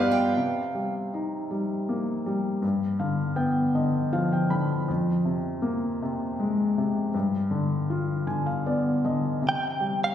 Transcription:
Already playing: felt piano G2 B3 F4 G4 D#5 F5 G5, harmonium G2 G3 F4 B4 D5, steel-string acoustic guitar B4 F5
0.00 felt piano D5
0.11 steel-string acoustic guitar G5
0.37 felt piano C3
0.75 felt piano G3
1.14 felt piano D#4
1.51 felt piano G3
1.89 felt piano A#3
2.26 felt piano G3
2.62 felt piano G2
2.99 felt piano D3 F5
3.36 felt piano B3 G5
3.75 felt piano D3 D#5
4.13 felt piano F3 F5
4.33 felt piano G5
4.50 felt piano D3 B5
4.88 felt piano F2
5.25 felt piano C3
5.62 felt piano A#3
6.02 felt piano C3
6.39 felt piano G#3
6.78 felt piano C3
7.14 felt piano G2
7.51 felt piano D3
7.90 felt piano F4
8.27 felt piano D3 G#5
8.46 felt piano F5
8.66 felt piano B3 D5
9.05 felt piano D3 D#5
9.42 felt piano C3
9.49 clean electric guitar G5
9.80 felt piano G3
10.04 clean electric guitar F5

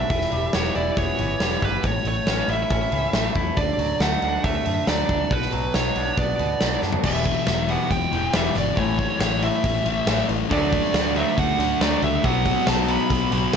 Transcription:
Already playing: clean electric guitar B2 F#3 B3 D4, lead electric guitar E5
0.10 picked electric bass E1, clean electric guitar E3, kick, open hi-hat
0.21 snare
0.32 picked electric bass E1, clean electric guitar G3, open hi-hat
0.53 picked electric bass E1, clean electric guitar B3, lead electric guitar C#5, snare, open hi-hat
0.65 snare
0.75 picked electric bass E1, clean electric guitar E4, lead electric guitar D5, open hi-hat
0.97 picked electric bass E1, clean electric guitar B3, lead electric guitar C#5, kick, open hi-hat
1.19 picked electric bass G1, clean electric guitar E3, open hi-hat
1.40 picked electric bass E1, clean electric guitar G3, snare, open hi-hat
1.62 picked electric bass G1, clean electric guitar E4, lead electric guitar B4, kick, open hi-hat
1.83 picked electric bass A1, clean electric guitar A2, lead electric guitar C#5, kick, open hi-hat
2.05 picked electric bass A1, clean electric guitar A3, lead electric guitar C#5, open hi-hat
2.26 picked electric bass A1, clean electric guitar C#4, snare, open hi-hat
2.48 picked electric bass A1, clean electric guitar E4, lead electric guitar E5, open hi-hat
2.70 picked electric bass A1, clean electric guitar C#4, kick, open hi-hat
2.92 picked electric bass C#2, clean electric guitar E3, open hi-hat
3.13 picked electric bass A1, clean electric guitar A3, snare, open hi-hat
3.35 picked electric bass E2, clean electric guitar E4, kick, open hi-hat
3.57 picked electric bass D2, clean electric guitar D3, lead electric guitar D5, kick, open hi-hat
3.78 picked electric bass D2, clean electric guitar F#3, open hi-hat
4.00 picked electric bass D2, clean electric guitar A3, lead electric guitar F#5, snare, open hi-hat
4.22 picked electric bass D2, clean electric guitar D4, open hi-hat
4.44 picked electric bass D2, clean electric guitar A3, lead electric guitar E5, kick, open hi-hat
4.66 picked electric bass F#2, clean electric guitar D3, open hi-hat
4.87 picked electric bass D2, clean electric guitar F#3, lead electric guitar D5, snare, open hi-hat
5.09 picked electric bass D2, clean electric guitar D4, kick, open hi-hat
5.30 picked electric bass B1, clean electric guitar B2, lead electric guitar B4, kick, open hi-hat
5.42 snare
5.52 picked electric bass B1, clean electric guitar F#3, open hi-hat
5.74 picked electric bass B1, clean electric guitar B3, lead electric guitar C#5, snare, open hi-hat
5.96 picked electric bass B1, clean electric guitar D4, open hi-hat
6.17 picked electric bass B1, clean electric guitar B3, lead electric guitar D5, kick, open hi-hat
6.39 picked electric bass D2, clean electric guitar B2, open hi-hat
6.61 picked electric bass B1, clean electric guitar F#3, snare, open hi-hat
6.82 picked electric bass F#2, clean electric guitar D4, snare
6.93 floor tom
7.03 picked electric bass E1, distorted electric guitar E2 B2, clean electric guitar E3 G3 B3, lead electric guitar E5, kick, crash
7.25 clean electric guitar E3 G3, kick, open hi-hat
7.47 picked electric bass E1, clean electric guitar E3 G3, snare, open hi-hat
7.68 clean electric guitar E3 G3 B3, lead electric guitar F#5, open hi-hat
7.90 picked electric bass E1, clean electric guitar E3 G3, lead electric guitar G5, kick, open hi-hat
8.12 picked electric bass E1, distorted electric guitar E2 B2, clean electric guitar E3 G3, open hi-hat
8.33 picked electric bass E1, distorted electric guitar E2 B2, clean electric guitar E3 G3 B3, lead electric guitar E5, snare, open hi-hat
8.55 picked electric bass G1, clean electric guitar E3 G3, lead electric guitar D5, snare, open hi-hat
8.77 picked electric bass A1, clean electric guitar A2 E3 A3, lead electric guitar C#5, kick, open hi-hat
8.99 clean electric guitar A2 E3, kick, open hi-hat
9.19 picked electric bass A1, clean electric guitar A2 E3, lead electric guitar C#5, snare, open hi-hat
9.42 clean electric guitar A2 E3 A3, lead electric guitar E5, open hi-hat
9.64 picked electric bass A1, clean electric guitar A2 E3, kick, open hi-hat
9.85 picked electric bass A1, clean electric guitar A2 E3, distorted electric guitar A3, open hi-hat
10.06 picked electric bass A1, clean electric guitar A2 E3 A3, snare, open hi-hat
10.18 snare
10.29 picked electric bass A1, clean electric guitar A2 E3, open hi-hat
10.50 picked electric bass D2, clean electric guitar D3 F#3 A3, distorted electric guitar D4, lead electric guitar D5, kick, open hi-hat
10.72 clean electric guitar D3 F#3, kick, open hi-hat
10.94 picked electric bass D2, clean electric guitar D3 F#3, snare, open hi-hat
11.15 clean electric guitar D3 F#3 A3, lead electric guitar E5, open hi-hat
11.37 picked electric bass D2, clean electric guitar D3 F#3, distorted electric guitar A3 D4, lead electric guitar F#5, kick, open hi-hat
11.58 picked electric bass D2, clean electric guitar D3 F#3, distorted electric guitar A3 D4, open hi-hat
11.80 picked electric bass D2, clean electric guitar D3 F#3 A3, distorted electric guitar D4, lead electric guitar D5, snare, open hi-hat
12.02 picked electric bass C#2, clean electric guitar D3 F#3, lead electric guitar E5, open hi-hat
12.24 picked electric bass B1, clean electric guitar B2 F#3 B3, lead electric guitar F#5, kick, open hi-hat
12.46 clean electric guitar B2 F#3, kick, open hi-hat
12.67 picked electric bass B1, clean electric guitar B2 F#3, lead electric guitar A5, snare, open hi-hat
12.88 clean electric guitar B2 F#3 B3, lead electric guitar B5, open hi-hat
13.10 picked electric bass B1, clean electric guitar B2 F#3, distorted electric guitar B3, kick, open hi-hat
13.32 picked electric bass B1, clean electric guitar B2 F#3, distorted electric guitar B3, open hi-hat
13.53 distorted electric guitar B2, snare, open hi-hat

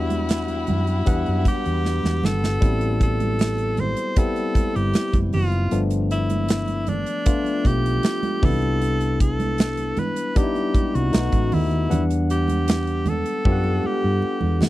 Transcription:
Already playing: fingered electric bass E2, tine electric piano G3 B3 D4 F#4, tenor saxophone E4, string section G4 F#5 B5
0.10 closed hi-hat, high conga
0.29 snare, closed hi-hat
0.48 closed hi-hat, muted conga
0.67 fingered electric bass F#2, closed hi-hat, high conga, low conga
0.87 closed hi-hat
1.06 fingered electric bass E2, tine electric piano G3 B3 D4 F#5, vibraphone B4, kick, closed hi-hat
1.26 fingered electric bass F#2, closed hi-hat
1.45 tenor saxophone G4, kick, closed hi-hat, high conga
1.66 fingered electric bass E2, closed hi-hat
1.85 snare, muted conga
2.04 fingered electric bass E2, snare, high conga
2.23 fingered electric bass G1, tenor saxophone A4, snare, low conga
2.44 snare
2.61 fingered electric bass A1, tine electric piano G3 B3 C4 E4, vibraphone F#4, kick, closed hi-hat, muted conga
2.81 closed hi-hat
2.86 vibraphone A4
3.01 tenor saxophone A4, kick, closed hi-hat
3.20 closed hi-hat, high conga
3.39 snare, closed hi-hat, muted conga
3.58 closed hi-hat
3.77 tenor saxophone C5, closed hi-hat, high conga, low conga
3.97 closed hi-hat
4.16 tine electric piano G3 B3 C4 E4, tenor saxophone A4, kick, closed hi-hat, muted conga
4.36 closed hi-hat, muted conga
4.55 muted fingered electric bass stroke, kick, closed hi-hat, high conga
4.76 fingered electric bass G1, tenor saxophone G4, closed hi-hat
4.94 snare, closed hi-hat, muted conga
5.13 fingered electric bass F#1, kick, closed hi-hat, high conga
5.33 fingered electric bass F#1, tenor saxophone F4, open hi-hat, low conga
5.52 closed hi-hat
5.71 fingered electric bass G1, tine electric piano F3 A3 B3 D4, closed hi-hat
5.90 closed hi-hat
6.11 tenor saxophone E4, closed hi-hat
6.30 closed hi-hat, high conga
6.48 snare, closed hi-hat
6.68 closed hi-hat, muted conga
6.87 tenor saxophone D4, closed hi-hat, high conga, low conga
7.06 closed hi-hat
7.26 tine electric piano A3 B3 D4 F4, vibraphone F4, kick, closed hi-hat, muted conga
7.45 closed hi-hat, muted conga
7.64 fingered electric bass B1, tenor saxophone G4, kick, closed hi-hat, high conga
7.86 closed hi-hat
8.03 snare, closed hi-hat, muted conga
8.23 closed hi-hat, muted conga, high conga
8.42 fingered electric bass C2, tine electric piano G3 B3 D4 E4, tenor saxophone A4, kick, open hi-hat, low conga
8.62 closed hi-hat
8.82 closed hi-hat
9.01 closed hi-hat
9.20 tenor saxophone A4, kick, closed hi-hat
9.40 closed hi-hat, high conga
9.58 snare, closed hi-hat
9.77 closed hi-hat, muted conga
9.97 tenor saxophone B4, closed hi-hat, high conga, low conga
10.16 closed hi-hat
10.35 tine electric piano G3 B3 D4 D#4, tenor saxophone G4, kick, closed hi-hat, muted conga
10.43 tine electric piano E4
10.55 closed hi-hat, muted conga
10.74 muted fingered electric bass stroke, kick, closed hi-hat, high conga
10.95 fingered electric bass C2, tenor saxophone F#4, closed hi-hat
11.12 fingered electric bass B1, tine electric piano A3 B3 D#4 F4, snare, closed hi-hat
11.20 tine electric piano F#4
11.32 fingered electric bass A1, kick, closed hi-hat, muted conga, high conga
11.52 fingered electric bass D#2, tenor saxophone E4, open hi-hat, low conga
11.71 closed hi-hat
11.90 fingered electric bass E2, tine electric piano G3 B3 D4 F#5, vibraphone D4, closed hi-hat, low conga
12.10 closed hi-hat
12.30 tenor saxophone G4, closed hi-hat
12.48 closed hi-hat, high conga
12.68 snare, closed hi-hat, muted conga
12.87 closed hi-hat
13.06 tenor saxophone A4, closed hi-hat, high conga, low conga
13.26 closed hi-hat
13.44 fingered electric bass F#2, tine electric piano B3 D4 F4 G4, vibraphone A4, kick
13.52 tine electric piano F#5
13.64 muted conga
13.83 tenor saxophone G4, muted fingered electric bass stroke, high conga
14.04 fingered electric bass G2
14.22 muted fingered electric bass stroke, muted conga
14.41 fingered electric bass E2, muted conga, high conga
14.61 fingered electric bass E3, snare, low conga

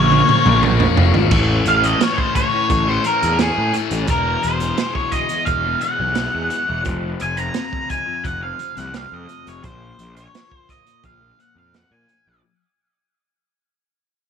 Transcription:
Already playing: picked electric bass A#1, distorted electric guitar F3 A#3, tonewheel organ F3 A#3 C#4 A#4, lead electric guitar C#5
0.12 distorted electric guitar F3 A#3, mid tom
0.29 distorted electric guitar A#2 F3 A#3, mid tom
0.46 picked electric bass A#1, distorted electric guitar F3 A#3, mid tom
0.62 distorted electric guitar A#2 F3 A#3, mid tom
0.80 floor tom
0.97 picked electric bass F1, distorted electric guitar A#2 F3 A#3, floor tom
1.14 picked electric bass G#1, distorted electric guitar F3 A#3, floor tom
1.31 picked electric bass A1, distorted electric guitar A2 E3 A3, tonewheel organ E3 C#4 C#5, kick, crash
1.66 picked electric bass A1, lead electric guitar F5, closed hi-hat
1.83 distorted electric guitar E3 A3, lead electric guitar D#5, closed hi-hat
2.00 distorted electric guitar A2 E3 A3, lead electric guitar C#5, snare, closed hi-hat
2.18 lead electric guitar C5, kick
2.35 lead electric guitar C#5, kick, closed hi-hat
2.53 muted distorted electric guitar stroke
2.70 picked electric bass A1, kick, closed hi-hat
2.87 distorted electric guitar E3 A3, lead electric guitar C5
3.04 distorted electric guitar A2 E3 A3, lead electric guitar A#4, closed hi-hat
3.22 picked electric bass E2, muted distorted electric guitar stroke, closed hi-hat
3.39 distorted electric guitar A2 E3 A3, lead electric guitar G#4, snare, closed hi-hat
3.58 picked electric bass A2
3.73 distorted electric guitar A2 E3 A3, closed hi-hat
3.90 picked electric bass A1, distorted electric guitar E3 A3, closed hi-hat
4.07 picked electric bass E1, distorted electric guitar E2 B2 E3, tonewheel organ G#3 G#4, lead electric guitar A#4, kick, closed hi-hat
4.43 picked electric bass E1, lead electric guitar C5, closed hi-hat
4.60 distorted electric guitar B2 E3, closed hi-hat
4.76 distorted electric guitar E2 B2 E3, snare, closed hi-hat
4.95 lead electric guitar C#5, kick
5.12 lead electric guitar D#5, kick, closed hi-hat
5.29 muted distorted electric guitar stroke, closed hi-hat
5.45 picked electric bass E1, lead electric guitar F5, kick, closed hi-hat
5.63 distorted electric guitar B2 E3
5.81 distorted electric guitar E2 B2 E3, lead electric guitar F#5, closed hi-hat
5.99 picked electric bass B1, muted distorted electric guitar stroke
6.14 distorted electric guitar E2 B2 E3, snare, closed hi-hat
6.34 picked electric bass E2
6.50 distorted electric guitar E2 B2 E3, closed hi-hat
6.66 picked electric bass E1, distorted electric guitar B2 E3
6.84 picked electric bass F1, distorted electric guitar F2 C3 F3, kick, closed hi-hat
7.20 picked electric bass F1, lead electric guitar G#5, closed hi-hat
7.36 distorted electric guitar C3 F3, lead electric guitar A#5, closed hi-hat
7.54 distorted electric guitar F2 C3 F3, snare, closed hi-hat
7.73 kick
7.90 lead electric guitar G#5, kick, closed hi-hat
8.06 muted distorted electric guitar stroke
8.24 picked electric bass F1, lead electric guitar F#5, kick, closed hi-hat
8.40 distorted electric guitar C3 F3, lead electric guitar F5
8.58 distorted electric guitar F2 C3 F3, closed hi-hat
8.76 picked electric bass C2, lead electric guitar F#5, muted distorted electric guitar stroke, snare, closed hi-hat
8.92 distorted electric guitar F2 C3 F3, lead electric guitar F5, snare, closed hi-hat
9.12 picked electric bass F2, lead electric guitar D#5
9.28 distorted electric guitar F2 C3 F3, closed hi-hat
9.45 picked electric bass F1, distorted electric guitar C3 F3, lead electric guitar C#5, closed hi-hat
9.63 picked electric bass A#1, distorted electric guitar A#2 F3 A#3, lead electric guitar C5, kick, closed hi-hat
9.99 picked electric bass A#1, closed hi-hat
10.16 distorted electric guitar F3 A#3, lead electric guitar C#5, closed hi-hat
10.32 distorted electric guitar A#2 F3 A#3, snare, closed hi-hat
10.52 lead electric guitar C5, kick
10.69 lead electric guitar D#5, kick, closed hi-hat
10.86 muted distorted electric guitar stroke, closed hi-hat
11.04 picked electric bass A#1, lead electric guitar F5, kick, closed hi-hat
11.20 distorted electric guitar F3 A#3
11.38 distorted electric guitar A#2 F3 A#3, lead electric guitar F#5, closed hi-hat
11.55 picked electric bass F2, lead electric guitar F5, muted distorted electric guitar stroke
11.74 distorted electric guitar A#2 F3 A#3, lead electric guitar F#5, snare, closed hi-hat
11.91 picked electric bass A#2, lead electric guitar G#5
12.08 distorted electric guitar A#2 F3 A#3, closed hi-hat
12.25 picked electric bass A#1, distorted electric guitar F3 A#3

